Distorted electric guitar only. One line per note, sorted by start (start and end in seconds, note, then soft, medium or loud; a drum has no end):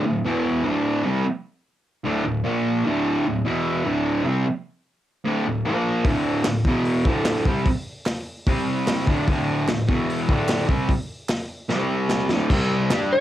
0.05 0.20 D2 medium
0.05 0.20 A2 medium
0.24 0.63 E2 medium
0.24 0.64 B2 medium
0.24 0.64 E3 medium
0.64 1.03 D2 medium
0.64 1.04 A2 medium
0.64 1.04 D3 medium
1.04 1.23 C3 medium
1.04 1.24 G3 medium
1.04 1.24 C4 loud
2.04 2.23 D2 medium
2.04 2.23 A2 loud
2.04 2.24 D3 loud
2.25 2.40 D2 medium
2.25 2.40 A2 medium
2.44 2.83 A#2 medium
2.44 2.84 F3 medium
2.44 2.84 A#3 medium
2.85 3.24 D2 medium
2.85 3.25 A2 loud
2.85 3.25 D3 loud
3.26 3.41 D2 medium
3.26 3.41 A2 medium
3.45 3.84 E2 medium
3.45 3.85 B2 medium
3.45 3.85 E3 medium
3.85 4.24 D2 medium
3.85 4.25 A2 medium
3.85 4.25 D3 loud
4.25 4.44 C3 medium
4.25 4.45 G3 loud
4.25 4.45 C4 medium
5.25 5.44 D2 medium
5.25 5.45 A2 loud
5.25 5.45 D3 loud
5.47 5.65 D2 medium
5.47 5.62 A2 medium
5.65 6.05 A#2 medium
5.65 6.06 F3 medium
5.65 6.06 A#3 medium
6.06 6.44 D2 medium
6.06 6.45 A2 loud
6.06 6.46 D3 loud
6.46 6.62 D2 medium
6.46 6.62 A2 medium
6.66 7.06 E2 medium
6.66 7.06 B2 medium
6.66 7.07 E3 medium
7.06 7.46 D2 medium
7.06 7.46 A2 medium
7.06 7.47 D3 medium
7.46 7.66 C3 medium
7.46 7.66 G3 medium
7.46 7.67 C4 medium
8.47 9.06 C3 medium
8.47 9.08 G3 loud
8.47 9.08 C4 loud
9.07 9.27 D2 medium
9.07 9.28 A2 medium
9.07 9.28 D3 loud
9.29 9.67 D2 loud
9.29 9.68 A2 loud
9.29 9.69 D3 loud
9.68 9.85 D2 medium
9.68 9.85 A2 medium
9.88 10.28 E2 medium
9.88 10.28 B2 medium
9.88 10.29 E3 medium
10.29 10.68 D2 medium
10.29 10.69 A2 medium
10.29 10.69 D3 loud
10.68 10.88 C3 medium
10.68 10.89 G3 medium
10.68 10.89 C4 loud
11.69 12.30 C3 medium
11.69 12.30 G3 medium
11.69 12.30 C4 medium
12.30 12.50 D2 medium
12.30 12.50 A2 medium
12.30 12.51 D3 medium
12.51 12.91 C3 medium
12.51 12.89 G3 loud
12.51 12.90 C4 loud
12.90 13.10 G3 medium
12.90 13.11 D4 loud
12.90 13.11 G4 medium
13.12 muted distorted electric guitar stroke medium